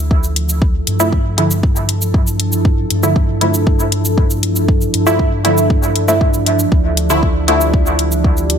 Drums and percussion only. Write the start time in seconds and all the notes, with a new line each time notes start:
0.11 kick
0.24 shaker
0.36 closed hi-hat
0.49 shaker
0.62 kick
0.87 closed hi-hat
1.00 shaker
1.12 kick
1.38 closed hi-hat
1.51 shaker
1.63 kick
1.76 shaker
1.89 closed hi-hat
2.02 shaker
2.14 kick
2.27 shaker
2.40 closed hi-hat
2.52 shaker
2.65 kick
2.90 closed hi-hat
3.03 shaker
3.16 kick
3.41 closed hi-hat
3.54 shaker
3.67 kick
3.79 shaker
3.92 closed hi-hat
4.05 shaker
4.18 kick
4.30 shaker
4.43 closed hi-hat
4.56 shaker
4.68 kick
4.81 shaker
4.94 closed hi-hat
5.07 shaker
5.19 kick
5.45 closed hi-hat
5.58 shaker
5.70 kick
5.83 shaker
5.96 closed hi-hat
6.08 shaker
6.21 kick
6.34 shaker
6.46 closed hi-hat
6.59 shaker
6.72 kick
6.97 closed hi-hat
7.10 shaker
7.23 kick
7.48 closed hi-hat
7.61 shaker
7.74 kick
7.86 shaker
7.99 closed hi-hat
8.12 shaker
8.24 kick
8.37 shaker
8.50 closed hi-hat